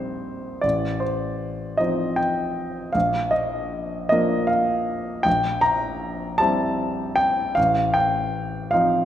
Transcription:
Already playing: A#1 G3 C4 D#4 C5 D5 D#5
0.61 A1 D5
1.00 C5
1.77 F3 C4 D#4 D#5
2.16 G5
2.93 A#1 F5
3.31 D#5
4.09 F3 A#3 D4 D#5
4.47 F5
5.23 A#1 G5
5.61 A#5
6.38 G3 C4 E4 A5
7.16 G5
7.55 A1 F5
7.94 G5
8.71 F3 C4 D#4 F5

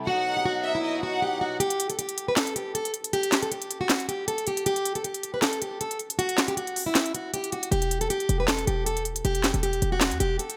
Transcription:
0.07 B2 F#3 D#4 F#4 F#5
0.37 G4
0.45 F#4
0.65 E5
0.75 E4
0.84 D#5
1.03 F#4 F#5
1.22 G4
1.41 F#4
1.60 G4, closed hi-hat
1.70 closed hi-hat
1.80 closed hi-hat
1.90 A4, closed hi-hat
1.99 G4, closed hi-hat
2.09 closed hi-hat
2.18 closed hi-hat
2.28 B4
2.37 A4, snare, clap, closed hi-hat
2.47 closed hi-hat
2.56 G4, closed hi-hat
2.75 A4, closed hi-hat
2.85 closed hi-hat
2.94 closed hi-hat
3.04 closed hi-hat
3.13 G4, closed hi-hat
3.23 closed hi-hat
3.32 snare, clap, closed hi-hat
3.42 A4, closed hi-hat
3.52 G4, closed hi-hat
3.62 closed hi-hat
3.71 closed hi-hat
3.81 F#4
3.90 snare, clap, closed hi-hat
4.00 closed hi-hat
4.09 G4, closed hi-hat
4.28 A4, closed hi-hat
4.38 closed hi-hat
4.47 G4, closed hi-hat
4.57 closed hi-hat
4.66 G4, closed hi-hat
4.76 closed hi-hat
4.85 closed hi-hat
4.95 A4, closed hi-hat
5.04 G4, closed hi-hat
5.14 closed hi-hat
5.23 closed hi-hat
5.34 B4
5.42 A4, snare, clap, closed hi-hat
5.53 closed hi-hat
5.62 G4, closed hi-hat
5.81 A4, closed hi-hat
5.91 closed hi-hat
5.99 closed hi-hat
6.10 closed hi-hat
6.19 F#4, closed hi-hat
6.29 closed hi-hat
6.38 snare, clap, closed hi-hat
6.48 G4, closed hi-hat
6.57 F#4, closed hi-hat
6.67 closed hi-hat
6.76 open hi-hat
6.86 E4
6.95 snare, clap, closed hi-hat
7.06 closed hi-hat
7.15 F#4, closed hi-hat
7.34 G4, closed hi-hat
7.44 closed hi-hat
7.52 F#4, closed hi-hat
7.63 closed hi-hat
7.71 E1 G4, closed hi-hat
7.82 closed hi-hat
7.91 closed hi-hat
8.01 A4, closed hi-hat
8.10 G4, closed hi-hat
8.20 closed hi-hat
8.29 E1, closed hi-hat
8.40 B4
8.48 A4, snare, clap, closed hi-hat
8.59 closed hi-hat
8.67 E1 G4, closed hi-hat
8.86 A4, closed hi-hat
8.97 closed hi-hat
9.05 closed hi-hat
9.16 closed hi-hat
9.25 E1 G4, closed hi-hat
9.35 closed hi-hat
9.44 snare, clap, closed hi-hat
9.54 E1 A4, closed hi-hat
9.63 G4, closed hi-hat
9.73 closed hi-hat
9.82 E1, closed hi-hat
9.92 F#4
10.01 snare, clap, closed hi-hat
10.11 E2, closed hi-hat
10.20 E1 G4, closed hi-hat
10.39 A4, closed hi-hat
10.50 closed hi-hat

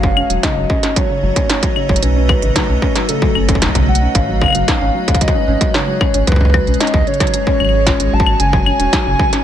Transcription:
Already playing: F#1 A3 C#4 D#4 F#4 B4 F5 A5
0.03 C#4, kick
0.17 C#4, claves
0.27 D#1 F#3 C#5, closed hi-hat
0.32 D#5
0.43 C#3 D#5, kick, snare, closed hi-hat
0.56 F#1 F#3
0.70 C#4, kick
0.83 C#4, snare, closed hi-hat
0.96 F#3 C#5, kick, closed hi-hat
1.10 C#3
1.23 F#1 F#3
1.36 C#4, kick, closed hi-hat
1.49 C#4, snare, closed hi-hat
1.63 F#3, kick, closed hi-hat
1.76 C#3, claves
1.89 F#1 F#3, kick
1.96 closed hi-hat
2.02 B1 C#4 B4, closed hi-hat
2.16 C#4
2.29 F#3 B4, kick, claves
2.42 A1 C#3, closed hi-hat
2.56 F#3, kick, snare, closed hi-hat
2.69 B1 C#4
2.82 C#4, kick
2.95 F#3, snare, closed hi-hat
3.09 C#3 A4, closed hi-hat
3.22 F#3, kick
3.35 F#1 C#4, claves
3.49 C#4, kick, closed hi-hat
3.55 kick
3.62 F#3, kick, snare, closed hi-hat
3.69 kick
3.75 B1 C#3, kick, closed hi-hat
3.88 F#3 F#5
3.95 closed hi-hat
4.02 C#4
4.15 G#1 G#3 C#4 F5, kick, closed hi-hat
4.28 F#3
4.41 C#3, kick, claves
4.44 claves
4.46 claves
4.48 claves
4.50 claves
4.53 F#1 F#3, closed hi-hat, claves
4.68 C#4, kick, snare, closed hi-hat
4.81 G#1 C#4
4.95 F#3
5.08 C#3, kick, closed hi-hat
5.15 kick, closed hi-hat
5.21 F#3 D#5, kick, closed hi-hat
5.28 kick, closed hi-hat
5.34 C#4
5.48 G#1 C#4
5.61 F#3, kick, closed hi-hat
5.74 C#3 C#5, snare
5.87 F#3
6.01 C#4, kick, claves
6.14 G#1 C#4, closed hi-hat
6.27 C#2 F#3 B4, kick, closed hi-hat
6.32 kick
6.36 kick
6.41 C#3, kick
6.45 C#5, kick
6.50 C#4, kick
6.54 F#3, kick, claves
6.60 F#4
6.67 B1 C#4, closed hi-hat
6.74 closed hi-hat
6.80 C#4 D#5, snare, closed hi-hat
6.87 closed hi-hat
6.94 C#2 F#3, kick
7.07 C#3 C#5, closed hi-hat
7.14 closed hi-hat
7.20 F#3, kick, snare, closed hi-hat, claves
7.27 closed hi-hat
7.34 C#4, closed hi-hat
7.47 C#4, kick
7.60 G#1 F#3, claves
7.65 claves
7.69 claves
7.74 G#3
7.87 C#4, kick, snare, closed hi-hat
8.00 G#1 G#3, closed hi-hat
8.13 G#1 F#3 A5
8.20 kick
8.26 G#1 F#3, claves
8.40 F#1 C#3 A3 G#5, closed hi-hat
8.53 F#3, kick
8.66 C#4 D#4, claves
8.79 D#1 C#4, closed hi-hat
8.93 F#3, kick, snare, closed hi-hat
9.06 F#1 C#3
9.13 D#5
9.19 F#3, kick
9.33 C#4, snare, closed hi-hat

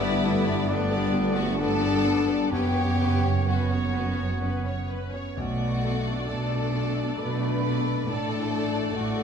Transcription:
Already playing: G1 G2 G3 B3 E4 D5 E5
0.02 B3 G4 B4 D5
0.24 A3 A4 B4
0.46 B3 D4 G4 D5
0.68 G3 A3 B3 D4 A4 B4 D5
0.91 B3 G4 A4 D5
1.14 A3 D4 A4 B4
1.35 A3 B3 F#4 G4 B4 D5 F#5
1.58 A3 B3 D4 A4 B4 D5 A5
1.81 B3 D4 G4 D5
2.05 A3 A4 B4
2.28 B3 G4 A4 D5
2.51 F#1 F#2 B3 C#4 G4 B4 C#5 G5
2.75 B3 B4 C#5
2.99 C#4 B4
3.23 B3 C#5
3.46 B3 C#4 F#4 B4 C#5 F#5
3.70 B3 C#4 C#5
3.94 B3 C#4 B4
4.18 B3 B4 C#5
4.42 C#4 B4
4.66 B3 C#5
4.90 C#4 B4
5.14 B3 C#4 C#5
5.36 B1 B2 A3 F#4 D5 F#5
5.61 D5
5.83 D4 A4 D5
6.07 D4
6.28 B1 B2 A3 D4 A4 D5 A5
6.52 A4
6.73 D4 A4 D5
6.96 D5
7.18 B1 B2 A3 D4 A4 B4 D5 B5
7.40 D4
7.62 D4 A4 D5
7.84 A4
8.07 A1 A2 A3 D4 A4 D5 A5
8.29 D5
8.51 D4 A4 D5
8.73 D4
8.94 A1 A2 A3 F#4 D5 F#5
9.16 A4

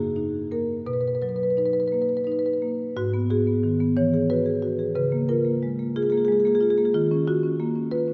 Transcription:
Already playing: F#2 A#3 G#4
0.16 D#4
0.51 A#3 A#4
0.86 B2 B4
0.93 B4
1.01 B4
1.08 B4
1.15 B4
1.22 F#3 B4
1.29 B4
1.36 B4
1.43 B4
1.50 B4
1.57 D#4 B4
1.66 B4
1.73 B4
1.80 B4
1.88 B4
1.92 A#3 B4
2.02 B4
2.09 B4
2.17 B4
2.24 D#4 B4
2.32 B4
2.39 B4
2.46 B4
2.53 B4
2.62 A#3
2.97 G#2 F#4
3.14 B3
3.30 F#4 G#4
3.47 B3
3.63 D#3
3.80 B3
3.97 E3 C#5
4.14 G#4
4.30 F#4 B4
4.46 G#4
4.63 F#4
4.79 G#4
4.95 C#3 B4
5.12 A#3
5.29 F4 A#4
5.45 A#3
5.63 G#3
5.79 A#3
5.96 F4 G#4
6.03 G#4
6.10 A#3 G#4
6.18 G#4
6.25 G#3 G#4
6.32 G#4
6.40 G#4
6.45 A#3 G#4
6.55 G#4
6.61 F4 G#4
6.70 G#4
6.78 A#3 G#4
6.85 G#4
6.94 D#3 F4
7.11 C#4
7.28 F4 F#4
7.43 C#4
7.60 A#3
7.75 C#4
7.91 F4 B4
8.08 C#4

